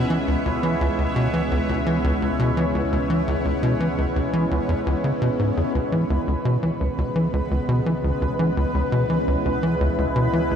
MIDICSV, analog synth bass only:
0, 0, Header, 1, 2, 480
1, 0, Start_track
1, 0, Key_signature, 4, "minor"
1, 0, Tempo, 705882
1, 67, Time_signature, 4, 2, 24, 8
1, 7178, End_track
2, 0, Start_track
2, 0, Title_t, "Analog synth bass"
2, 0, Program_c, 0, 38
2, 68, Note_on_c, 0, 52, 82
2, 124, Note_off_c, 0, 52, 0
2, 189, Note_on_c, 0, 37, 77
2, 245, Note_off_c, 0, 37, 0
2, 309, Note_on_c, 0, 37, 78
2, 342, Note_off_c, 0, 37, 0
2, 429, Note_on_c, 0, 52, 76
2, 513, Note_off_c, 0, 52, 0
2, 549, Note_on_c, 0, 37, 101
2, 605, Note_off_c, 0, 37, 0
2, 669, Note_on_c, 0, 37, 72
2, 724, Note_off_c, 0, 37, 0
2, 788, Note_on_c, 0, 47, 97
2, 872, Note_off_c, 0, 47, 0
2, 908, Note_on_c, 0, 52, 75
2, 964, Note_off_c, 0, 52, 0
2, 1030, Note_on_c, 0, 37, 82
2, 1085, Note_off_c, 0, 37, 0
2, 1148, Note_on_c, 0, 37, 74
2, 1182, Note_off_c, 0, 37, 0
2, 1268, Note_on_c, 0, 52, 76
2, 1353, Note_off_c, 0, 52, 0
2, 1388, Note_on_c, 0, 37, 95
2, 1444, Note_off_c, 0, 37, 0
2, 1508, Note_on_c, 0, 37, 78
2, 1564, Note_off_c, 0, 37, 0
2, 1628, Note_on_c, 0, 47, 99
2, 1712, Note_off_c, 0, 47, 0
2, 1748, Note_on_c, 0, 52, 77
2, 1804, Note_off_c, 0, 52, 0
2, 1867, Note_on_c, 0, 37, 72
2, 1924, Note_off_c, 0, 37, 0
2, 1987, Note_on_c, 0, 37, 78
2, 2021, Note_off_c, 0, 37, 0
2, 2107, Note_on_c, 0, 52, 75
2, 2192, Note_off_c, 0, 52, 0
2, 2227, Note_on_c, 0, 37, 103
2, 2283, Note_off_c, 0, 37, 0
2, 2346, Note_on_c, 0, 37, 72
2, 2403, Note_off_c, 0, 37, 0
2, 2467, Note_on_c, 0, 47, 100
2, 2552, Note_off_c, 0, 47, 0
2, 2587, Note_on_c, 0, 52, 70
2, 2643, Note_off_c, 0, 52, 0
2, 2707, Note_on_c, 0, 37, 75
2, 2764, Note_off_c, 0, 37, 0
2, 2827, Note_on_c, 0, 37, 78
2, 2861, Note_off_c, 0, 37, 0
2, 2947, Note_on_c, 0, 52, 83
2, 3032, Note_off_c, 0, 52, 0
2, 3067, Note_on_c, 0, 37, 98
2, 3123, Note_off_c, 0, 37, 0
2, 3187, Note_on_c, 0, 40, 101
2, 3221, Note_off_c, 0, 40, 0
2, 3308, Note_on_c, 0, 37, 95
2, 3364, Note_off_c, 0, 37, 0
2, 3427, Note_on_c, 0, 49, 80
2, 3484, Note_off_c, 0, 49, 0
2, 3547, Note_on_c, 0, 47, 99
2, 3603, Note_off_c, 0, 47, 0
2, 3667, Note_on_c, 0, 44, 77
2, 3752, Note_off_c, 0, 44, 0
2, 3788, Note_on_c, 0, 40, 72
2, 3821, Note_off_c, 0, 40, 0
2, 3907, Note_on_c, 0, 37, 80
2, 3941, Note_off_c, 0, 37, 0
2, 4027, Note_on_c, 0, 52, 77
2, 4112, Note_off_c, 0, 52, 0
2, 4146, Note_on_c, 0, 37, 104
2, 4203, Note_off_c, 0, 37, 0
2, 4267, Note_on_c, 0, 37, 76
2, 4323, Note_off_c, 0, 37, 0
2, 4387, Note_on_c, 0, 47, 102
2, 4472, Note_off_c, 0, 47, 0
2, 4507, Note_on_c, 0, 52, 74
2, 4563, Note_off_c, 0, 52, 0
2, 4627, Note_on_c, 0, 37, 75
2, 4684, Note_off_c, 0, 37, 0
2, 4747, Note_on_c, 0, 37, 79
2, 4781, Note_off_c, 0, 37, 0
2, 4866, Note_on_c, 0, 52, 78
2, 4951, Note_off_c, 0, 52, 0
2, 4986, Note_on_c, 0, 37, 98
2, 5043, Note_off_c, 0, 37, 0
2, 5107, Note_on_c, 0, 37, 74
2, 5163, Note_off_c, 0, 37, 0
2, 5227, Note_on_c, 0, 47, 97
2, 5312, Note_off_c, 0, 47, 0
2, 5347, Note_on_c, 0, 52, 78
2, 5403, Note_off_c, 0, 52, 0
2, 5466, Note_on_c, 0, 37, 75
2, 5523, Note_off_c, 0, 37, 0
2, 5586, Note_on_c, 0, 37, 74
2, 5620, Note_off_c, 0, 37, 0
2, 5706, Note_on_c, 0, 52, 76
2, 5792, Note_off_c, 0, 52, 0
2, 5826, Note_on_c, 0, 37, 99
2, 5883, Note_off_c, 0, 37, 0
2, 5946, Note_on_c, 0, 37, 76
2, 6003, Note_off_c, 0, 37, 0
2, 6066, Note_on_c, 0, 47, 99
2, 6151, Note_off_c, 0, 47, 0
2, 6186, Note_on_c, 0, 52, 74
2, 6243, Note_off_c, 0, 52, 0
2, 6306, Note_on_c, 0, 37, 82
2, 6363, Note_off_c, 0, 37, 0
2, 6427, Note_on_c, 0, 37, 72
2, 6461, Note_off_c, 0, 37, 0
2, 6548, Note_on_c, 0, 52, 75
2, 6632, Note_off_c, 0, 52, 0
2, 6668, Note_on_c, 0, 37, 100
2, 6724, Note_off_c, 0, 37, 0
2, 6788, Note_on_c, 0, 37, 81
2, 6844, Note_off_c, 0, 37, 0
2, 6907, Note_on_c, 0, 47, 98
2, 6992, Note_off_c, 0, 47, 0
2, 7027, Note_on_c, 0, 52, 75
2, 7084, Note_off_c, 0, 52, 0
2, 7147, Note_on_c, 0, 37, 74
2, 7178, Note_off_c, 0, 37, 0
2, 7178, End_track
0, 0, End_of_file